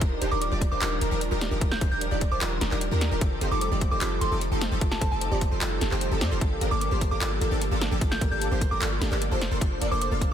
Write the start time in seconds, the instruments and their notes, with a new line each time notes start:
Already playing: analog synth pad D4
0.01 808-style bass D#1, analog synth pad D#3 G3 F4, synth arpeggio sound F4, digital synth lead A#4, kick, closed hi-hat
0.12 synth arpeggio sound F4
0.21 808-style bass D#1, supersaw synth F3 D4 D#4 G4 C5, synth arpeggio sound A#4, digital synth lead C5, closed hi-hat
0.31 808-style bass D#1, supersaw synth F3 D4 D#4 G4 A#4, digital synth lead A#4, synth arpeggio sound A#4, synth bell D6
0.41 synth arpeggio sound D5, synth bell D6, closed hi-hat
0.51 808-style bass D#1, supersaw synth F3 D4 D#4 G4 D5, synth arpeggio sound G4, digital synth lead D5
0.61 synth arpeggio sound D5, kick, closed hi-hat
0.71 808-style bass D#1, supersaw synth F3 D4 D#4 G4 C5, synth arpeggio sound A#4, digital synth lead C5, synth bell D6
0.81 808-style bass D#1, supersaw synth F3 D4 D#4 G4 A#4, synth arpeggio sound F4, digital synth lead A#4, synth bell D6, clap, closed hi-hat
0.91 synth arpeggio sound F4
1.01 808-style bass D#1, supersaw synth F3 D4 D#4 G4 A#4, digital synth lead A#4, synth arpeggio sound A#4, closed hi-hat
1.11 808-style bass D#1, supersaw synth F3 D4 D#4 G4 A#4, digital synth lead A#4, synth arpeggio sound A#4
1.21 synth arpeggio sound D5, closed hi-hat
1.31 808-style bass D#1, supersaw synth F3 D4 D#4 G4 A#4, synth arpeggio sound G4, digital synth lead A#4
1.41 synth arpeggio sound D5, snare, closed hi-hat
1.51 808-style bass D#1, supersaw synth F3 D4 D#4 G4 A#4, synth arpeggio sound A#4, digital synth lead A#4
1.61 808-style bass D#1, supersaw synth F3, synth arpeggio sound F4, digital synth lead A#4, kick, closed hi-hat
1.71 synth arpeggio sound F4, synth bell G6, snare
1.81 808-style bass D#1, supersaw synth F3 D4 D#4 G4 C5, synth arpeggio sound A#4, digital synth lead C5, kick, closed hi-hat
1.91 808-style bass D#1, supersaw synth F3 D4 D#4 G4 A#4, synth arpeggio sound A#4, digital synth lead A#4, synth bell G6
2.01 synth arpeggio sound D5, closed hi-hat
2.11 808-style bass D#1, supersaw synth F3 D4 D#4 G4 D5, synth arpeggio sound G4, digital synth lead D5
2.21 synth arpeggio sound D5, kick, closed hi-hat
2.31 808-style bass D#1, supersaw synth F3 D4 D#4 G4 C5, synth arpeggio sound A#4, digital synth lead C5, synth bell D6
2.41 808-style bass D#1, supersaw synth F3 D4 D#4 G4 A#4, synth arpeggio sound F4, digital synth lead A#4, clap, closed hi-hat
2.51 synth arpeggio sound F4
2.61 808-style bass D#1, supersaw synth F3 D4 D#4 G4 A#4, synth arpeggio sound A#4, digital synth lead A#4, snare, closed hi-hat
2.71 808-style bass D#1, supersaw synth F3 D4 D#4 G4 A#4, digital synth lead A#4, synth arpeggio sound A#4, clap
2.81 synth arpeggio sound D5, closed hi-hat
2.91 808-style bass D#2, supersaw synth F3 D4 D#4 G4 A#4, synth arpeggio sound G4, digital synth lead A#4
3.01 synth arpeggio sound D5, snare, closed hi-hat
3.11 808-style bass D#1, supersaw synth F3 D4 D#4 G4 A#4, synth arpeggio sound A#4, digital synth lead A#4
3.21 808-style bass F1, analog synth pad A3 F4, supersaw synth C4 D#4 A4, synth arpeggio sound F4, digital synth lead A4, kick, closed hi-hat
3.31 synth arpeggio sound F4
3.41 808-style bass F1, supersaw synth F3 C4 D#4 G4 C5, synth arpeggio sound A4, digital synth lead C5, closed hi-hat
3.51 808-style bass F1, supersaw synth F3 C4 D#4 G4 A4, synth arpeggio sound A4, digital synth lead A4, synth bell D6
3.61 synth arpeggio sound C5, synth bell D6, closed hi-hat
3.71 808-style bass F1, supersaw synth F3 C4 D#4 G4 D5, synth arpeggio sound G4, digital synth lead D5
3.81 synth arpeggio sound C5, kick, closed hi-hat
3.91 808-style bass F1, supersaw synth F3 C4 D#4 G4 C5, synth arpeggio sound A4, digital synth lead C5, synth bell D6
4.01 808-style bass F1, supersaw synth F3 C4 D#4 G4 A4, synth arpeggio sound F4, digital synth lead A4, synth bell D6, clap, closed hi-hat
4.11 synth arpeggio sound F4
4.21 808-style bass F1, supersaw synth F3 C4 D#4 G4 A4, synth arpeggio sound A4, digital synth lead A4, synth bell C6, closed hi-hat
4.31 808-style bass F1, supersaw synth F3 C4 D#4 G4 A4, synth arpeggio sound A4, digital synth lead A4
4.41 synth arpeggio sound C5, closed hi-hat
4.51 808-style bass F1, supersaw synth F3 C4 D#4 G4 A4, synth arpeggio sound G4, digital synth lead A4
4.61 synth arpeggio sound C5, snare, closed hi-hat
4.71 808-style bass F1, supersaw synth F3 C4 D#4 G4 A4, synth arpeggio sound A4, digital synth lead A4
4.81 808-style bass F1, supersaw synth F3 C4 D#4 G4 A4, synth arpeggio sound F4, digital synth lead A4, kick, closed hi-hat
4.91 synth arpeggio sound F4, synth bell A5, snare
5.01 808-style bass F1, supersaw synth F3 C4 D#4 G4 C5, synth arpeggio sound A4, digital synth lead C5, synth bell A5, kick, closed hi-hat
5.11 808-style bass F1, supersaw synth F3 C4 D#4 G4 A4, synth arpeggio sound A4, digital synth lead A4, synth bell A5
5.21 synth arpeggio sound C5, closed hi-hat
5.31 808-style bass F1, supersaw synth F3 C4 D#4 G4 D5, synth arpeggio sound G4, digital synth lead D5
5.41 synth arpeggio sound C5, kick, closed hi-hat
5.51 808-style bass F1, supersaw synth F3 C4 D#4 G4 C5, synth arpeggio sound A4, digital synth lead C5
5.61 808-style bass F1, supersaw synth F3 C4 D#4 G4 A4, synth arpeggio sound F4, digital synth lead A4, clap, closed hi-hat
5.71 synth arpeggio sound F4
5.81 808-style bass F1, supersaw synth F3 C4 D#4 G4 A4, synth arpeggio sound A4, digital synth lead A4, snare, closed hi-hat
5.91 808-style bass F1, supersaw synth F3 C4 D#4 G4 C5, synth arpeggio sound A4, digital synth lead C5, clap
6.01 synth arpeggio sound C5, closed hi-hat
6.11 808-style bass F1, supersaw synth F3 C4 D#4 G4 A4, synth arpeggio sound G4, digital synth lead A4
6.21 808-style bass F2, supersaw synth F3 C4 D#4 G4 D5, synth arpeggio sound C5, digital synth lead D5, snare, closed hi-hat
6.31 808-style bass F1, supersaw synth F3 C4 D#4 G4 C5, synth arpeggio sound A4, digital synth lead C5
6.41 808-style bass G1, supersaw synth F3 A#3 D4 G4 A4, analog synth pad F3 A3 A#3 G4, synth arpeggio sound F4, digital synth lead A4, kick, closed hi-hat
6.51 synth arpeggio sound F4
6.61 808-style bass G1, supersaw synth F3 A#3 D4 G4 A#4, synth arpeggio sound A4, digital synth lead A#4, closed hi-hat
6.71 808-style bass G1, supersaw synth F3 A#3 D4 G4 A4, digital synth lead A4, synth arpeggio sound D5, synth bell D6
6.81 synth arpeggio sound A#4, synth bell D6, closed hi-hat
6.91 808-style bass G1, supersaw synth F3 A#3 D4 G4 C5, synth arpeggio sound G4, digital synth lead C5
7.01 synth arpeggio sound A#4, kick, closed hi-hat
7.11 808-style bass G1, supersaw synth F3 A#3 D4 G4 A#4, synth arpeggio sound A4, digital synth lead A#4, synth bell D6
7.21 808-style bass G1, supersaw synth F3 A#3 D4 G4 A4, synth arpeggio sound F4, digital synth lead A4, synth bell D6, clap, closed hi-hat
7.31 synth arpeggio sound F4
7.41 808-style bass G1, supersaw synth F3 A#3 D4 G4 A4, synth arpeggio sound A4, digital synth lead A4, closed hi-hat
7.51 808-style bass G1, supersaw synth F3 A#3 D4 G4 A4, digital synth lead A4, synth arpeggio sound D5
7.61 synth arpeggio sound A#4, closed hi-hat
7.71 808-style bass G1, supersaw synth F3 A#3 D4 G4 A4, synth arpeggio sound G4, digital synth lead A4
7.81 synth arpeggio sound A#4, snare, closed hi-hat
7.91 808-style bass G1, supersaw synth F3 A#3 D4 G4 A4, synth arpeggio sound A4, digital synth lead A4
8.01 808-style bass G1, supersaw synth F3 A#3 D4 G4 A4, synth arpeggio sound F4, digital synth lead A4, kick, closed hi-hat
8.11 synth arpeggio sound F4, synth bell G6, snare
8.21 808-style bass G1, supersaw synth F3 A#3 D4 G4 A#4, synth arpeggio sound A4, digital synth lead A#4, kick, closed hi-hat
8.31 808-style bass G1, supersaw synth F3 A#3 D4 G4 A4, digital synth lead A4, synth arpeggio sound D5, synth bell G6
8.41 synth arpeggio sound A#4, closed hi-hat
8.51 808-style bass G1, supersaw synth F3 A#3 D4 G4 C5, synth arpeggio sound G4, digital synth lead C5
8.61 synth arpeggio sound A#4, kick, closed hi-hat
8.71 808-style bass G1, supersaw synth F3 A#3 D4 G4 A#4, synth arpeggio sound A4, digital synth lead A#4, synth bell D6
8.81 808-style bass G1, supersaw synth F3 A#3 D4 G4 A4, synth arpeggio sound F4, digital synth lead A4, clap, closed hi-hat
8.91 synth arpeggio sound F4
9.01 808-style bass G1, supersaw synth F3 A#3 D4 G4 A4, synth arpeggio sound A4, digital synth lead A4, snare, closed hi-hat
9.11 808-style bass G1, supersaw synth F3 A#3 D4 G4 A4, digital synth lead A4, synth arpeggio sound D5, clap
9.21 synth arpeggio sound A#4, closed hi-hat
9.31 808-style bass F1, supersaw synth F3 A#3 D4 A4 C5, synth arpeggio sound G4, digital synth lead C5
9.41 analog synth pad C3 D4, synth arpeggio sound C5, snare, closed hi-hat
9.51 808-style bass F1, supersaw synth F3 A#3 D4 A4 C5, synth arpeggio sound A#4, digital synth lead C5
9.61 808-style bass F1, supersaw synth D4 A4 C5, synth arpeggio sound F4, digital synth lead C5, kick, closed hi-hat
9.71 synth arpeggio sound F4
9.81 808-style bass F1, supersaw synth F3 A#3 D4 A4 D5, synth arpeggio sound A#4, digital synth lead D5, closed hi-hat
9.91 808-style bass F1, supersaw synth F3 A#3 D4 A4 C5, digital synth lead C5, synth arpeggio sound D5, synth bell D6
10.01 synth arpeggio sound C5, synth bell D6, closed hi-hat
10.11 808-style bass F1, supersaw synth F3 A#3 D4 A4 F5, synth arpeggio sound A4, digital synth lead F5
10.21 synth arpeggio sound C5, kick, closed hi-hat